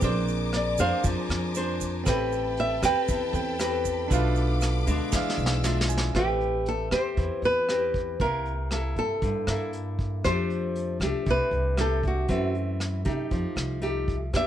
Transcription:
Already playing: string section D6
0.00 upright bass A#1, nylon-string guitar A#3 D4 G#4 C5, tine electric piano C4 G#4 A#4, string section C5 G#5 A#5, kick, closed hi-hat, shaker
0.05 tine electric piano D5
0.28 closed hi-hat, shaker
0.53 nylon-string guitar D5, cross-stick, closed hi-hat
0.78 upright bass F2, nylon-string guitar D4 G#4 C5 F5, kick, closed hi-hat, shaker
1.04 upright bass F2, nylon-string guitar F3, kick, closed hi-hat, shaker
1.29 upright bass F2, cross-stick, closed hi-hat, shaker
1.55 nylon-string guitar D4 G#4 C5, closed hi-hat, shaker
1.81 kick, closed hi-hat, shaker
2.04 upright bass A1, nylon-string guitar A3 C4 G4 B4, tine electric piano C4 A4 B4, string section A4 G5 A5 B5, kick, cross-stick, closed hi-hat, shaker
2.09 tine electric piano G5
2.32 closed hi-hat, shaker
2.57 nylon-string guitar E5, closed hi-hat
2.82 upright bass E2, nylon-string guitar C4 G4 B4 G5, kick, cross-stick, shaker
3.08 upright bass E2, nylon-string guitar E3, kick, closed hi-hat, shaker
3.33 upright bass E2, tine electric piano C4 A4 B4 G5, closed hi-hat, shaker
3.60 nylon-string guitar C4 G4 B4, cross-stick, closed hi-hat, shaker
3.85 kick, closed hi-hat, shaker
4.08 upright bass B1, nylon-string guitar B2 A3 D4 F4, tine electric piano D4 A4, string section F5 D6, kick, closed hi-hat, shaker
4.12 tine electric piano B4 F5
4.36 closed hi-hat, shaker
4.61 cross-stick, closed hi-hat, shaker
4.87 upright bass D2, nylon-string guitar G#3 D4, kick, closed hi-hat, shaker
5.12 upright bass E2, nylon-string guitar E3, tine electric piano G#4 D5, string section G#4 F5 E6, kick, snare, shaker
5.16 tine electric piano F5
5.29 snare
5.38 upright bass B1, shaker
5.46 snare
5.64 nylon-string guitar G#3 D4 F4, tine electric piano E5, snare, shaker
5.81 snare
5.89 tine electric piano G#5, shaker
5.97 snare
6.15 upright bass A1, nylon-string guitar A3 C4 G4 B4, kick, cross-stick, closed hi-hat
6.40 closed hi-hat
6.66 nylon-string guitar A4, closed hi-hat
6.91 upright bass E2, nylon-string guitar C4 G4 C5, cross-stick, closed hi-hat
7.17 upright bass E2, nylon-string guitar E3, kick, closed hi-hat
7.42 upright bass E2, nylon-string guitar B4, closed hi-hat
7.69 nylon-string guitar C4 G4 B4, cross-stick, closed hi-hat
7.94 kick, closed hi-hat
8.20 upright bass C2, nylon-string guitar C3 A#3 E4 A#4, kick, closed hi-hat
8.45 closed hi-hat
8.71 nylon-string guitar A#3 E4 A4, cross-stick, closed hi-hat
8.96 upright bass G2, nylon-string guitar A4, closed hi-hat
9.22 upright bass G2, nylon-string guitar G2, kick, closed hi-hat
9.47 upright bass G2, nylon-string guitar A#3 E4 A4, cross-stick, closed hi-hat
9.73 closed hi-hat
9.99 kick, closed hi-hat
10.24 upright bass F2, nylon-string guitar F3 A3 D4 G4 C5, kick, cross-stick, closed hi-hat
10.50 closed hi-hat
10.75 closed hi-hat
11.00 upright bass C2, nylon-string guitar A3 D4 G4, cross-stick, closed hi-hat
11.26 upright bass C2, nylon-string guitar C3, kick, closed hi-hat
11.30 nylon-string guitar B4
11.51 upright bass C2, closed hi-hat
11.77 nylon-string guitar A3 D4 G4 A4, cross-stick, closed hi-hat
12.03 kick, closed hi-hat
12.07 nylon-string guitar F#4
12.28 nylon-string guitar F#2 E3 A3 C4, upright bass F#2, kick, closed hi-hat
12.55 closed hi-hat
12.80 cross-stick, closed hi-hat
13.05 upright bass C3, nylon-string guitar A3 D#4 G4, kick, closed hi-hat
13.31 upright bass F2, nylon-string guitar F3, kick, closed hi-hat
13.56 upright bass C2, cross-stick, closed hi-hat
13.82 nylon-string guitar A3 D#4 G4, closed hi-hat
14.08 kick, closed hi-hat
14.33 upright bass E2, nylon-string guitar E3 B3 D4 G4 E5, kick, cross-stick, closed hi-hat

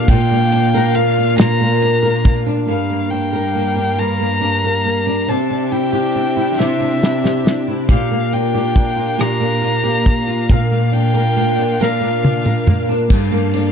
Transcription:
Already playing: nylon-string guitar A#3 D4 G4, string section A#3 D4 F5, violin F5
0.07 string section A#2 F4, nylon-string guitar A#2, violin G5, kick, ride
0.31 nylon-string guitar A#3
0.52 nylon-string guitar D4, ride
0.74 nylon-string guitar A#4
0.95 nylon-string guitar A#3, violin F5, ride
1.17 nylon-string guitar D4
1.38 nylon-string guitar A#2, violin A#5, snare, ride
1.60 nylon-string guitar A#3
1.82 nylon-string guitar D4, ride
2.03 nylon-string guitar A#4
2.25 nylon-string guitar A#3, kick, ride
2.46 nylon-string guitar D4
2.68 nylon-string guitar G2 A#4, string section G2 G3 A#3 A#4 F5, violin F5
2.90 nylon-string guitar A#3
3.10 nylon-string guitar D4, violin G5
3.33 nylon-string guitar A#4
3.55 nylon-string guitar A#3
3.76 nylon-string guitar D4
3.98 nylon-string guitar G2 A#4, violin A#5
4.19 nylon-string guitar A#3
4.41 nylon-string guitar D4
4.64 nylon-string guitar A#4
4.85 nylon-string guitar A#3
5.07 nylon-string guitar D4
5.28 nylon-string guitar C3 G4, string section C3 C4 D4 G4 E5, violin A5
5.50 nylon-string guitar D4
5.72 nylon-string guitar E4, violin G5
5.93 nylon-string guitar G4
6.15 nylon-string guitar D4
6.36 nylon-string guitar E4
6.59 nylon-string guitar C3 G4, violin E5, snare
6.80 nylon-string guitar D4
7.02 nylon-string guitar E4, snare
7.24 nylon-string guitar G4, snare
7.44 nylon-string guitar D4, snare
7.68 nylon-string guitar E4
7.88 string section A#2 A#3 D4 A#4 F5, nylon-string guitar A#2 G4, violin F5, kick, closed hi-hat
8.11 nylon-string guitar A#3
8.32 nylon-string guitar F4, violin G5, closed hi-hat
8.54 nylon-string guitar G4
8.75 nylon-string guitar A#3, kick, closed hi-hat
8.96 nylon-string guitar F4
9.18 nylon-string guitar A#2 G4, violin A#5, cross-stick, closed hi-hat
9.40 nylon-string guitar A#3
9.62 nylon-string guitar F4, closed hi-hat
9.83 nylon-string guitar G4
10.06 nylon-string guitar A#3, kick, closed hi-hat
10.27 nylon-string guitar F4
10.49 nylon-string guitar A#2 A#4, string section D4 F4, violin F5, kick, closed hi-hat
10.71 nylon-string guitar A#3
10.92 nylon-string guitar D4, violin G5, closed hi-hat
11.14 nylon-string guitar A#4
11.36 nylon-string guitar A#3, closed hi-hat
11.58 nylon-string guitar D4
11.80 nylon-string guitar A#2 A#4, violin F5, snare
12.01 nylon-string guitar A#3
12.23 nylon-string guitar D4, high tom
12.45 nylon-string guitar A#4, mid tom
12.67 nylon-string guitar A#3, mid tom
12.89 nylon-string guitar D4
13.10 string section G2 G3 A#3 A4 F5, nylon-string guitar G2, kick, crash
13.31 nylon-string guitar A#3
13.54 nylon-string guitar D4, ride

